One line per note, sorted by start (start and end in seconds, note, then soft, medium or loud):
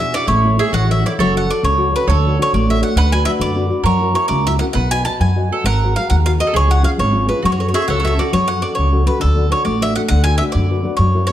0.00 0.12 E2 medium
0.00 0.12 B2 medium
0.00 0.13 D4 soft
0.00 0.13 E4 soft
0.00 0.15 G#4 medium
0.00 0.14 G#4 soft
0.00 0.14 E5 medium
0.14 0.25 D4 soft
0.14 0.26 E4 soft
0.14 0.27 F#4 medium
0.14 0.26 G#4 medium
0.14 0.27 D5 medium
0.27 0.57 A1 loud
0.27 0.58 A3 medium
0.27 0.56 E4 medium
0.27 0.85 C#5 medium
0.44 0.56 E4 soft
0.44 0.57 A4 soft
0.44 0.57 C#5 medium
0.57 0.82 E4 soft
0.57 0.72 G#4 medium
0.57 0.83 A4 soft
0.57 0.73 E5 medium
0.72 1.02 A1 medium
0.72 1.02 E3 medium
0.72 1.05 F#4 medium
0.72 0.90 F#5 medium
0.89 1.03 E4 soft
0.89 1.04 A4 soft
0.89 1.04 C#5 soft
0.89 1.04 E5 medium
1.04 1.15 E4 soft
1.04 1.18 E4 medium
1.04 1.16 A4 soft
1.04 1.16 C#5 medium
1.04 1.11 D5 medium
1.19 1.48 F#1 medium
1.19 1.49 F#3 medium
1.19 2.04 A4 medium
1.19 1.34 C#5 medium
1.35 1.47 F#4 soft
1.35 1.48 A4 soft
1.35 1.48 C#5 medium
1.35 1.49 F#5 medium
1.49 1.73 F#4 soft
1.49 1.73 A4 soft
1.49 1.73 C#5 soft
1.49 1.64 D5 medium
1.63 1.92 C#2 medium
1.63 1.93 C#3 medium
1.63 1.92 C#5 medium
1.77 1.90 F#4 soft
1.77 1.91 A4 soft
1.77 1.91 C#5 soft
1.91 2.04 F#4 soft
1.91 2.04 A4 soft
1.91 2.04 C#5 medium
1.96 2.09 B4 medium
2.08 2.37 D2 loud
2.08 2.37 D3 medium
2.08 2.37 A4 medium
2.08 2.98 C#5 medium
2.25 2.37 D4 soft
2.25 2.37 F#4 soft
2.25 2.38 A4 soft
2.39 2.63 D4 soft
2.39 2.63 F#4 soft
2.39 2.63 A4 soft
2.39 2.54 C#5 medium
2.53 2.81 A1 medium
2.53 2.82 A3 medium
2.53 2.68 D5 medium
2.69 2.79 D4 soft
2.69 2.80 F#4 soft
2.69 2.80 A4 medium
2.69 2.82 E5 medium
2.80 2.92 D4 soft
2.80 2.93 F#4 soft
2.80 2.93 A4 soft
2.80 2.96 F#5 medium
2.96 3.25 D2 medium
2.96 3.26 D3 medium
2.96 3.82 B4 medium
2.96 3.12 F#5 loud
3.12 3.26 D4 soft
3.12 3.26 F#4 soft
3.12 3.27 B4 soft
3.12 3.25 G#5 medium
3.25 3.51 D4 soft
3.25 3.51 F#4 soft
3.25 3.51 B4 soft
3.25 3.30 E5 loud
3.39 3.69 F#2 medium
3.39 3.69 D3 medium
3.39 3.82 D5 medium
3.56 3.68 D4 soft
3.56 3.69 F#4 soft
3.56 3.69 B4 soft
3.69 3.81 D4 soft
3.69 3.82 F#4 soft
3.69 3.82 B4 soft
3.83 4.13 F#2 medium
3.83 4.15 F#3 medium
3.83 4.56 A#4 medium
3.83 4.14 C#5 medium
4.01 4.12 E4 soft
4.01 4.12 F#4 soft
4.01 4.13 A#4 soft
4.13 4.39 E4 soft
4.13 4.39 F#4 soft
4.13 4.40 A#4 soft
4.13 4.28 C#5 medium
4.28 4.60 C#2 medium
4.28 4.59 C#3 medium
4.28 4.44 D5 medium
4.47 4.59 E4 soft
4.47 4.59 F#4 soft
4.47 4.59 A#4 soft
4.47 4.52 E5 loud
4.59 4.72 E4 soft
4.59 4.72 F#4 soft
4.59 4.72 A#4 soft
4.59 4.64 F#5 medium
4.73 5.05 B1 loud
4.73 5.04 B3 medium
4.73 5.52 B4 medium
4.73 4.89 F#5 medium
4.91 5.03 F#4 soft
4.91 5.04 B4 soft
4.91 5.04 D#5 soft
4.91 5.04 G#5 loud
5.05 5.30 F#4 soft
5.05 5.30 B4 soft
5.05 5.30 D#5 soft
5.05 5.19 A5 loud
5.20 5.49 F#2 medium
5.20 5.50 F#3 soft
5.20 5.62 G#5 medium
5.36 5.50 F#4 soft
5.36 5.51 B4 soft
5.36 5.52 D#5 medium
5.51 5.63 F#4 soft
5.51 5.66 A4 medium
5.51 5.63 B4 soft
5.51 5.63 D#5 soft
5.64 5.93 G#1 loud
5.64 5.94 G#3 medium
5.64 6.47 A#4 medium
5.64 5.94 F#5 loud
5.83 5.96 F#4 soft
5.83 5.97 G#4 soft
5.83 5.97 C5 soft
5.96 6.21 F#4 soft
5.96 6.21 G#4 soft
5.96 6.21 C5 soft
5.96 6.09 F5 medium
6.10 6.39 D#2 loud
6.10 6.39 D#3 medium
6.10 6.15 F#5 medium
6.26 6.37 F#4 soft
6.26 6.38 G#4 soft
6.26 6.39 C5 soft
6.26 6.31 F5 loud
6.39 6.50 F#4 soft
6.39 6.51 G#4 soft
6.39 6.51 C5 medium
6.39 6.55 D#5 medium
6.47 6.54 A4 medium
6.53 6.84 C#2 loud
6.53 6.83 C#3 medium
6.53 7.42 G#4 medium
6.53 6.70 C#5 loud
6.67 6.81 C#4 soft
6.67 6.82 F4 soft
6.67 6.82 G#4 soft
6.67 6.84 F#5 loud
6.82 7.07 C#4 soft
6.82 7.08 F4 soft
6.82 7.08 G#4 soft
6.82 6.89 F5 medium
6.97 7.28 G#1 loud
6.97 7.27 G#3 medium
6.97 7.27 C#5 medium
7.12 7.27 C#4 soft
7.12 7.27 F4 soft
7.12 7.27 G#4 medium
7.28 7.40 C#4 soft
7.28 7.40 F4 soft
7.28 7.40 G#4 medium
7.28 7.42 B4 medium
7.43 7.73 F#2 medium
7.43 7.73 F#3 soft
7.43 7.71 F#4 medium
7.43 7.51 C#5 medium
7.52 7.59 C#5 medium
7.59 7.72 C#4 soft
7.59 7.72 F#4 soft
7.59 7.73 A4 medium
7.59 7.67 C#5 medium
7.68 7.74 C#5 soft
7.73 7.98 C#4 soft
7.73 7.98 F#4 soft
7.73 7.89 G#4 medium
7.73 7.98 A4 soft
7.73 7.81 C#5 medium
7.73 7.87 E5 medium
7.82 7.89 C#5 soft
7.88 8.18 C#2 medium
7.88 8.18 C#3 medium
7.88 8.21 A4 medium
7.88 7.97 C#5 soft
7.88 8.04 F#5 medium
8.00 8.16 C#4 soft
8.00 8.06 C#5 medium
8.04 8.17 F#4 soft
8.04 8.17 A4 soft
8.04 8.13 C#5 medium
8.04 8.18 E5 medium
8.17 8.29 C#4 soft
8.17 8.30 F#4 soft
8.17 8.33 F#4 soft
8.17 8.30 A4 soft
8.17 8.32 D5 medium
8.32 8.62 F#2 medium
8.32 8.62 F#3 medium
8.32 8.48 C#5 medium
8.48 8.61 C#4 soft
8.48 8.62 F#4 soft
8.48 8.62 A4 soft
8.48 8.63 F#5 medium
8.62 8.87 C#4 soft
8.62 8.87 F#4 soft
8.62 8.88 A4 soft
8.62 8.74 D5 medium
8.75 9.07 C#2 medium
8.75 9.06 C#3 soft
8.75 9.04 C#5 medium
8.92 9.05 C#4 soft
8.92 9.06 F#4 soft
8.92 9.05 A4 soft
9.06 9.18 C#4 soft
9.06 9.19 F#4 soft
9.06 9.19 A4 medium
9.06 9.20 B4 medium
9.20 9.52 D2 medium
9.20 9.50 D3 medium
9.20 9.51 A4 medium
9.36 9.48 D4 soft
9.36 9.48 F#4 soft
9.36 9.49 A4 soft
9.49 9.74 D4 soft
9.49 9.75 F#4 soft
9.49 9.75 A4 soft
9.49 9.64 C#5 medium
9.64 9.96 A1 medium
9.64 9.95 A3 medium
9.64 9.82 D5 medium
9.81 9.95 D4 soft
9.81 9.96 F#4 soft
9.81 9.95 A4 medium
9.81 9.95 E5 loud
9.96 10.08 D4 soft
9.96 10.08 F#4 soft
9.96 10.08 A4 medium
9.96 10.01 F#5 medium
10.08 10.40 D2 medium
10.08 10.39 D3 medium
10.08 10.23 F#5 loud
10.24 10.40 D4 soft
10.24 10.40 F#4 soft
10.24 10.40 B4 soft
10.24 10.37 G#5 loud
10.38 10.65 D4 soft
10.38 10.65 F#4 soft
10.38 10.65 B4 soft
10.38 10.43 E5 medium
10.52 10.84 F#2 medium
10.52 10.85 D3 medium
10.52 10.95 D5 medium
10.70 10.82 D4 soft
10.70 10.83 F#4 soft
10.70 10.83 B4 medium
10.83 10.96 D4 soft
10.83 10.96 F#4 soft
10.83 10.96 B4 soft
10.97 11.28 F#2 medium
10.97 11.29 F#3 medium
10.97 11.26 C#5 medium
11.14 11.28 E4 soft
11.14 11.29 F#4 soft
11.14 11.29 A#4 soft
11.27 11.32 C#5 medium